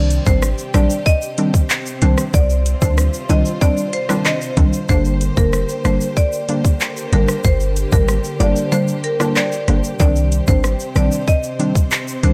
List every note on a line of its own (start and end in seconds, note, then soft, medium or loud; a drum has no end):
0.00 0.20 C2 loud
0.00 4.85 C3 medium
0.00 0.23 D#3 medium
0.00 0.23 G3 medium
0.00 0.23 C4 medium
0.00 4.85 C4 medium
0.00 0.23 D4 loud
0.00 2.32 G4 medium
0.00 9.96 C5 medium
0.10 closed hi-hat medium
0.10 shaker medium
0.26 0.54 G#1 medium
0.26 0.46 D#3 medium
0.26 0.46 G3 medium
0.26 0.46 C4 medium
0.26 0.46 D4 medium
0.26 0.48 C5 medium
0.26 kick medium
0.26 shaker medium
0.42 cross-stick loud
0.42 shaker medium
0.58 shaker medium
0.58 shaker soft
0.74 0.88 A#1 loud
0.74 0.94 D#3 medium
0.74 0.94 G3 medium
0.74 0.94 C4 medium
0.74 0.94 D4 medium
0.74 0.95 D5 medium
0.74 cross-stick loud
0.74 closed hi-hat medium
0.74 shaker soft
0.74 shaker medium
0.90 shaker medium
1.06 1.51 D#5 loud
1.06 kick medium
1.06 shaker medium
1.22 shaker medium
1.38 1.58 D#3 medium
1.38 1.58 G3 medium
1.38 1.58 C4 medium
1.38 1.58 D4 medium
1.38 closed hi-hat medium
1.38 shaker medium
1.54 kick medium
1.54 shaker medium
1.70 clap medium
1.70 shaker medium
1.86 shaker medium
2.02 2.16 C2 medium
2.02 2.21 D#3 medium
2.02 2.22 G3 medium
2.02 2.22 C4 medium
2.02 2.22 D4 medium
2.02 2.12 C5 medium
2.02 closed hi-hat medium
2.02 shaker medium
2.18 cross-stick loud
2.18 shaker medium
2.34 2.75 C2 loud
2.34 4.87 F4 medium
2.34 2.44 D5 medium
2.34 kick loud
2.34 shaker medium
2.50 shaker medium
2.50 shaker soft
2.66 closed hi-hat medium
2.66 shaker medium
2.82 3.09 D2 medium
2.82 3.01 D#3 medium
2.82 3.01 G3 medium
2.82 3.01 C4 medium
2.82 3.02 D4 medium
2.82 2.92 C5 medium
2.82 kick medium
2.82 shaker medium
2.98 cross-stick loud
2.98 shaker medium
3.14 shaker medium
3.29 3.43 C2 medium
3.29 3.49 D#3 medium
3.29 3.49 G3 medium
3.29 3.49 C4 medium
3.29 3.49 D4 medium
3.29 3.40 D#5 medium
3.29 closed hi-hat medium
3.29 high timbale medium
3.29 shaker medium
3.45 shaker medium
3.61 3.81 D#3 loud
3.61 3.81 G3 medium
3.61 3.81 C4 medium
3.61 3.81 D4 loud
3.61 3.72 D5 medium
3.61 kick loud
3.61 shaker medium
3.77 shaker medium
3.93 4.04 C5 medium
3.93 closed hi-hat medium
3.93 shaker medium
4.09 4.29 D#3 medium
4.09 4.29 G3 medium
4.09 4.29 C4 medium
4.09 4.29 D4 medium
4.09 cross-stick loud
4.09 high timbale medium
4.09 shaker medium
4.25 4.70 D#5 medium
4.25 cross-stick medium
4.25 clap medium
4.25 shaker medium
4.41 shaker medium
4.57 4.71 C2 loud
4.57 4.77 D#3 medium
4.57 4.77 G3 medium
4.57 4.77 C4 medium
4.57 4.77 D4 medium
4.57 kick loud
4.57 closed hi-hat medium
4.57 shaker medium
4.73 shaker medium
4.89 5.30 G1 loud
4.89 5.33 D3 medium
4.89 9.96 D3 medium
4.89 5.33 G3 medium
4.89 5.33 A#3 medium
4.89 9.96 A#3 medium
4.89 5.33 D4 loud
4.89 12.33 G4 medium
4.89 5.00 C5 medium
4.89 kick loud
4.89 shaker medium
5.05 shaker medium
5.05 shaker soft
5.21 closed hi-hat medium
5.21 shaker medium
5.37 5.64 F1 medium
5.37 5.56 D3 medium
5.37 5.57 G3 medium
5.37 5.57 A#3 medium
5.37 5.57 D4 medium
5.37 5.58 A#4 medium
5.37 kick loud
5.37 shaker medium
5.53 cross-stick loud
5.53 shaker medium
5.69 shaker soft
5.69 shaker medium
5.85 5.99 G1 medium
5.85 6.04 D3 medium
5.85 6.04 G3 medium
5.85 6.05 A#3 medium
5.85 6.05 D4 medium
5.85 6.06 C5 medium
5.85 cross-stick loud
5.85 closed hi-hat medium
5.85 shaker medium
6.01 shaker medium
6.17 6.62 D5 loud
6.17 kick medium
6.17 shaker medium
6.32 shaker medium
6.49 6.68 D3 medium
6.49 6.68 G3 medium
6.49 6.68 A#3 medium
6.49 6.68 D4 medium
6.49 closed hi-hat medium
6.49 shaker medium
6.65 kick loud
6.65 shaker medium
6.80 clap medium
6.80 shaker medium
6.97 shaker medium
7.13 7.26 G#1 loud
7.13 7.32 D3 medium
7.13 7.32 G3 medium
7.13 7.32 A#3 medium
7.13 7.32 D4 medium
7.13 7.23 A#4 medium
7.13 closed hi-hat medium
7.13 shaker medium
7.28 cross-stick loud
7.28 shaker medium
7.44 7.86 G1 loud
7.44 7.55 C5 medium
7.44 kick loud
7.44 shaker medium
7.60 shaker soft
7.76 closed hi-hat medium
7.76 shaker medium
7.92 8.20 G#1 medium
7.92 8.12 D3 medium
7.92 8.12 G3 medium
7.92 8.12 A#3 medium
7.92 8.12 D4 medium
7.92 8.03 A#4 medium
7.92 kick medium
7.92 shaker medium
8.08 cross-stick loud
8.08 shaker medium
8.24 shaker soft
8.24 shaker medium
8.40 8.54 G1 medium
8.40 8.60 D3 medium
8.40 8.60 G3 medium
8.40 8.60 A#3 medium
8.40 8.60 D4 medium
8.40 8.51 D5 medium
8.40 closed hi-hat medium
8.40 high timbale medium
8.40 shaker medium
8.56 shaker medium
8.72 8.91 D3 medium
8.72 8.92 G3 medium
8.72 8.92 A#3 medium
8.72 8.92 D4 loud
8.72 8.83 C5 medium
8.72 shaker medium
8.88 shaker medium
9.04 9.15 A#4 medium
9.04 closed hi-hat medium
9.04 shaker medium
9.20 9.39 D3 medium
9.20 9.40 G3 medium
9.20 9.40 A#3 medium
9.20 9.40 D4 medium
9.20 cross-stick loud
9.20 high timbale medium
9.20 shaker medium
9.36 9.81 D5 medium
9.36 cross-stick medium
9.36 clap medium
9.36 shaker medium
9.52 shaker medium
9.68 9.82 G1 loud
9.68 9.87 D3 medium
9.68 9.88 G3 medium
9.68 9.88 A#3 medium
9.68 9.88 D4 medium
9.68 cross-stick medium
9.68 closed hi-hat medium
9.68 shaker medium
9.84 shaker medium
9.99 10.41 C2 loud
9.99 12.33 C3 medium
9.99 10.44 D#3 loud
9.99 10.44 G3 medium
9.99 12.33 C4 medium
9.99 10.44 C4 medium
9.99 10.44 D4 loud
9.99 12.33 C5 medium
9.99 10.10 D5 medium
9.99 kick loud
9.99 shaker medium
10.16 shaker soft
10.16 shaker medium
10.32 closed hi-hat medium
10.32 shaker medium
10.47 10.75 G#1 medium
10.47 10.67 D#3 medium
10.47 10.67 G3 medium
10.47 10.67 C4 medium
10.47 10.67 D4 medium
10.47 10.69 C5 medium
10.47 kick medium
10.47 shaker medium
10.64 cross-stick loud
10.64 shaker medium
10.79 shaker medium
10.95 11.09 A#1 loud
10.95 11.15 D#3 medium
10.95 11.15 G3 medium
10.95 11.15 C4 medium
10.95 11.15 D4 medium
10.95 11.17 D5 medium
10.95 cross-stick loud
10.95 closed hi-hat medium
10.95 shaker medium
11.12 shaker medium
11.28 11.73 D#5 loud
11.28 kick loud
11.28 shaker medium
11.43 shaker medium
11.59 11.79 D#3 medium
11.59 11.79 G3 medium
11.59 11.79 C4 medium
11.59 11.79 D4 medium
11.59 closed hi-hat medium
11.59 shaker medium
11.75 kick medium
11.75 shaker medium
11.91 clap medium
11.91 shaker medium
12.08 shaker medium
12.23 12.33 C2 loud
12.23 12.33 D#3 medium
12.23 12.33 G3 medium
12.23 12.33 C4 medium
12.23 12.33 D4 medium
12.23 12.33 C5 medium
12.23 closed hi-hat medium
12.23 shaker medium